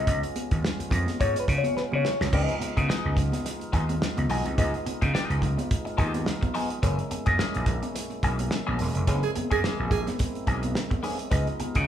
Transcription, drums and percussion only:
0.07 kick loud
0.07 closed hi-hat medium
0.07 muted conga soft
0.23 closed hi-hat medium
0.36 closed hi-hat medium
0.36 high conga medium
0.51 kick loud
0.51 closed hi-hat medium
0.62 snare loud
0.62 muted conga soft
0.79 closed hi-hat medium
0.79 muted conga soft
0.90 kick loud
0.90 closed hi-hat medium
0.90 low conga medium
1.06 snare soft
1.06 closed hi-hat soft
1.06 high conga medium
1.21 kick loud
1.21 closed hi-hat medium
1.34 closed hi-hat medium
1.34 muted conga soft
1.48 kick loud
1.48 closed hi-hat medium
1.64 closed hi-hat medium
1.64 high conga medium
1.77 snare soft
1.92 muted conga soft
1.92 high conga medium
2.05 snare medium
2.05 high conga medium
2.05 low conga medium
2.21 snare medium
2.33 kick loud
2.33 crash loud
2.33 muted conga soft
2.49 closed hi-hat soft
2.49 muted conga soft
2.60 closed hi-hat medium
2.60 high conga medium
2.76 kick medium
2.76 closed hi-hat soft
2.76 high conga medium
2.90 snare medium
3.16 kick medium
3.16 closed hi-hat medium
3.16 low conga medium
3.32 snare soft
3.32 closed hi-hat medium
3.32 high conga medium
3.46 snare soft
3.46 closed hi-hat loud
3.46 muted conga soft
3.60 closed hi-hat soft
3.60 muted conga soft
3.73 kick medium
3.73 closed hi-hat medium
3.89 closed hi-hat medium
3.89 high conga medium
4.01 snare loud
4.01 muted conga soft
4.17 closed hi-hat soft
4.17 muted conga soft
4.17 high conga medium
4.30 open hi-hat medium
4.30 high conga medium
4.30 low conga medium
4.46 closed hi-hat medium
4.58 kick loud
4.58 closed hi-hat medium
4.58 muted conga soft
4.74 closed hi-hat soft
4.74 muted conga soft
4.86 closed hi-hat medium
4.86 high conga medium
5.01 kick medium
5.01 closed hi-hat medium
5.01 high conga medium
5.15 snare loud
5.30 closed hi-hat soft
5.30 muted conga soft
5.42 kick medium
5.42 closed hi-hat medium
5.42 low conga medium
5.58 closed hi-hat soft
5.58 high conga medium
5.71 kick loud
5.71 closed hi-hat medium
5.71 muted conga soft
5.85 closed hi-hat soft
5.85 muted conga soft
5.98 kick loud
5.98 closed hi-hat medium
6.14 closed hi-hat medium
6.14 high conga medium
6.26 snare loud
6.26 muted conga soft
6.43 kick medium
6.43 closed hi-hat soft
6.43 muted conga soft
6.43 high conga medium
6.54 open hi-hat medium
6.54 high conga medium
6.54 low conga medium
6.70 closed hi-hat soft
6.83 kick loud
6.83 closed hi-hat medium
6.83 muted conga soft
6.99 closed hi-hat soft
6.99 muted conga soft
7.11 closed hi-hat medium
7.11 high conga medium
7.26 kick loud
7.26 closed hi-hat soft
7.26 high conga medium
7.39 snare loud
7.39 muted conga soft
7.55 closed hi-hat soft
7.55 muted conga soft
7.66 kick medium
7.66 closed hi-hat medium
7.66 low conga medium
7.82 closed hi-hat soft
7.82 high conga medium
7.96 snare soft
7.96 closed hi-hat loud
7.96 muted conga soft
8.10 closed hi-hat soft
8.10 muted conga soft
8.23 kick medium
8.23 closed hi-hat medium
8.39 closed hi-hat medium
8.39 high conga medium
8.51 snare loud
8.68 muted conga soft
8.68 high conga medium
8.79 open hi-hat medium
8.79 high conga medium
8.79 low conga medium
8.95 closed hi-hat medium
9.07 kick loud
9.07 closed hi-hat loud
9.23 closed hi-hat soft
9.23 muted conga soft
9.36 closed hi-hat medium
9.36 high conga medium
9.51 kick loud
9.51 closed hi-hat soft
9.51 high conga medium
9.64 snare loud
9.91 kick loud
9.91 closed hi-hat medium
9.91 low conga medium
10.07 snare soft
10.07 closed hi-hat medium
10.07 high conga medium
10.07 low conga medium
10.19 kick loud
10.19 snare soft
10.19 closed hi-hat medium
10.35 closed hi-hat soft
10.47 kick medium
10.47 closed hi-hat medium
10.63 closed hi-hat medium
10.63 high conga medium
10.75 snare loud
10.75 muted conga soft
10.91 kick medium
10.91 closed hi-hat soft
10.91 muted conga soft
10.91 high conga medium
11.04 open hi-hat medium
11.04 high conga medium
11.04 low conga medium
11.19 closed hi-hat medium
11.31 kick loud
11.31 closed hi-hat medium
11.31 muted conga soft
11.47 closed hi-hat soft
11.47 muted conga soft
11.60 closed hi-hat medium
11.60 high conga medium
11.74 kick medium
11.74 closed hi-hat medium
11.74 high conga medium

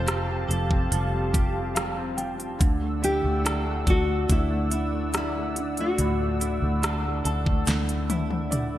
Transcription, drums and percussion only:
0.08 cross-stick loud
0.08 closed hi-hat medium
0.51 closed hi-hat medium
0.71 kick medium
0.92 closed hi-hat medium
1.34 kick medium
1.34 closed hi-hat medium
1.76 cross-stick medium
1.76 closed hi-hat medium
2.18 closed hi-hat medium
2.40 closed hi-hat soft
2.61 kick loud
2.61 closed hi-hat medium
3.04 closed hi-hat medium
3.46 cross-stick loud
3.46 closed hi-hat medium
3.87 kick medium
3.87 closed hi-hat medium
4.30 kick medium
4.30 closed hi-hat medium
4.71 closed hi-hat medium
5.14 cross-stick medium
5.14 closed hi-hat medium
5.56 closed hi-hat medium
5.77 closed hi-hat soft
5.98 closed hi-hat medium
6.41 closed hi-hat medium
6.83 cross-stick loud
6.83 closed hi-hat medium
7.25 closed hi-hat medium
7.46 kick medium
7.67 snare medium
7.67 closed hi-hat medium
7.89 closed hi-hat soft
8.10 closed hi-hat medium
8.10 high tom medium
8.31 high tom medium
8.52 closed hi-hat medium
8.52 mid tom medium

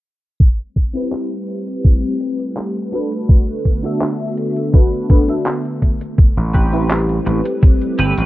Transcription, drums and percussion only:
0.40 kick loud
0.40 closed hi-hat soft
0.59 closed hi-hat soft
0.76 kick medium
0.76 closed hi-hat medium
0.95 closed hi-hat medium
1.12 clap loud
1.31 closed hi-hat soft
1.48 closed hi-hat medium
1.67 closed hi-hat soft
1.84 kick loud
1.84 closed hi-hat soft
2.03 closed hi-hat soft
2.21 closed hi-hat medium
2.39 closed hi-hat medium
2.57 clap loud
2.57 closed hi-hat soft
2.76 closed hi-hat soft
2.93 closed hi-hat medium
3.12 closed hi-hat medium
3.29 kick loud
3.29 closed hi-hat medium
3.48 closed hi-hat soft
3.65 kick medium
3.65 closed hi-hat medium
3.84 closed hi-hat medium
4.01 clap loud
4.01 closed hi-hat soft
4.20 closed hi-hat soft
4.37 closed hi-hat medium
4.56 closed hi-hat medium
4.74 kick loud
4.74 closed hi-hat medium
4.93 closed hi-hat soft
5.10 kick loud
5.10 closed hi-hat medium
5.29 closed hi-hat medium
5.46 clap loud
5.46 closed hi-hat medium
5.65 closed hi-hat soft
5.82 kick medium
5.82 closed hi-hat medium
6.01 closed hi-hat medium
6.18 kick loud
6.18 closed hi-hat soft
6.37 closed hi-hat soft
6.54 kick medium
6.54 closed hi-hat medium
6.73 closed hi-hat soft
6.90 clap loud
6.90 closed hi-hat soft
7.09 closed hi-hat soft
7.27 closed hi-hat medium
7.45 closed hi-hat medium
7.63 kick loud
7.63 closed hi-hat soft
7.82 closed hi-hat soft
7.99 closed hi-hat medium
8.17 closed hi-hat medium

